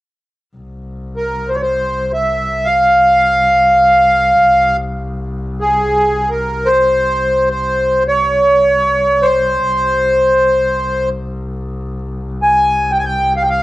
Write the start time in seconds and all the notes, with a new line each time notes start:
0.56 C2
1.17 A#4
1.49 C5
1.54 C#5
1.62 C5
2.13 E5
2.65 F5
5.61 G#4
6.30 A#4
6.66 C5
7.50 C5
8.08 C#5
9.22 C5
9.67 C2
12.43 G#5
12.91 G5
12.99 G#5
13.05 G5
13.37 F5
13.42 G5
13.50 F5